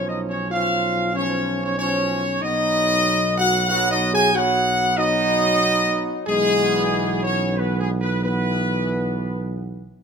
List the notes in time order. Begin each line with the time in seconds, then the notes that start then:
Already playing: B1 F3 C#4
0.09 D#4 D#5
0.29 C#4 C#5
0.51 F3 C#4 F4 F5
1.14 F3 C#4 C#5
1.62 C#4 C#5
1.77 F3 C#4 C#5
2.41 B1 F#3 B3 D#4 D#5
3.37 F#4 F#5
3.69 F#3 B3 F#4 F#5
3.91 D#4 D#5
4.13 G#4 G#5
4.33 F#3 B3 F#4 F#5
4.97 F#3 B3 D#4 D#5
6.26 B1 E3 G#3 B3 G#4
7.23 C#4 C#5
7.56 E3 B3 B4
7.80 G#3 G#4
8.01 B3 B4
8.23 E3 B3 B4